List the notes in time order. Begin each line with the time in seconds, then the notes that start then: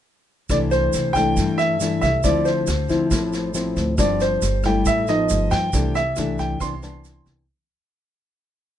0.49 C2 C3 E3 A3 D4 D5, kick, cross-stick, snare, shaker
0.71 C5, snare, shaker
0.93 C2, snare, shaker
1.13 E3 A3 D4 G5, kick, cross-stick, snare, shaker
1.37 G2, kick, snare, shaker
1.58 E5, snare, shaker
1.80 E3 A3 D4, snare, shaker
2.01 C2 E5, kick, cross-stick, snare, shaker
2.23 D2 D3 F3 C4 E4 D5, kick, snare, shaker
2.45 C5, snare, shaker
2.67 D2, cross-stick, snare, shaker
2.89 F3 C4 E4, kick, snare, shaker
3.11 A1 A2, kick, cross-stick, snare, shaker
3.33 snare, shaker
3.54 F3 C4 E4, snare, shaker
3.76 D2, kick, snare, shaker
3.98 G1 G2 F3 C4 D4 D5, kick, cross-stick, snare, shaker
4.20 C5, snare, shaker
4.42 G1, snare, shaker
4.63 G3 A3 E4 G5, kick, cross-stick, snare, shaker
4.85 A1 A2 E5, kick, snare, shaker
5.07 F3 B3 D#4 D#5, snare, shaker
5.29 G1, snare, shaker
5.51 G2 G5, kick, cross-stick, snare, shaker
5.73 C2 C3 E3 A3 D4, kick, snare, shaker
5.95 E5, snare, shaker
6.16 C2 E3 A3 D4, cross-stick, snare, shaker
6.38 G5, kick, snare, shaker
6.60 C2 C3 E3 B3 D4 C6, kick, cross-stick, snare, shaker
6.83 E3 B3 D4, snare, shaker
7.04 snare, shaker
7.26 C2, kick, snare, shaker